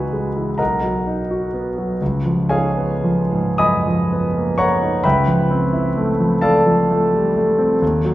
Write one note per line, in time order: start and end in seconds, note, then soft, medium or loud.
0.00 0.55 C#2 soft
0.00 0.36 E3 soft
0.00 0.62 D#4 soft
0.00 0.27 F#4 soft
0.00 0.54 B4 soft
0.00 0.55 E5 soft
0.00 0.55 G#5 soft
0.00 0.58 B5 medium
0.13 0.50 G#3 soft
0.36 0.60 E3 soft
0.58 1.97 B1 soft
0.58 1.97 A#4 soft
0.58 1.96 D#5 soft
0.58 1.97 F#5 soft
0.58 2.00 A#5 soft
0.83 1.21 F#3 soft
1.07 1.45 D#4 soft
1.31 1.68 F#4 soft
1.54 1.91 B3 soft
1.78 2.01 F#3 soft
2.02 5.01 C#2 soft
2.25 2.66 F3 soft
2.49 2.93 D#4 soft
2.49 3.55 G#4 soft
2.49 3.55 C#5 soft
2.49 3.55 F5 soft
2.49 3.57 G#5 medium
2.77 3.21 B3 soft
3.04 3.48 F3 soft
3.32 3.75 G#2 soft
3.58 3.86 F#2 soft
3.58 4.55 D#5 soft
3.58 4.54 G#5 soft
3.58 4.55 B5 soft
3.58 4.58 D#6 medium
3.87 4.26 F3 soft
4.12 4.50 B3 soft
4.37 4.59 A#3 soft
4.58 4.96 B3 soft
4.58 5.01 C#5 soft
4.58 5.01 F#5 soft
4.58 5.01 A#5 soft
4.58 5.04 C#6 medium
4.82 5.05 D#4 soft
5.04 7.78 C#2 soft
5.04 6.40 B4 soft
5.04 6.40 E5 soft
5.04 6.40 G5 soft
5.04 6.43 B5 medium
5.27 5.64 F3 soft
5.51 5.88 C4 soft
5.73 6.11 E4 soft
5.97 6.34 A3 soft
6.20 6.58 F3 soft
6.41 6.67 E3 soft
6.41 7.77 A4 soft
6.41 7.77 D5 soft
6.41 7.77 F5 soft
6.41 7.80 A5 medium
6.66 7.03 F3 soft
6.90 7.27 A3 soft
7.13 7.36 G3 soft
7.36 7.73 A3 soft
7.58 7.82 C4 soft
7.82 8.14 D#2 soft
8.05 8.14 F#3 soft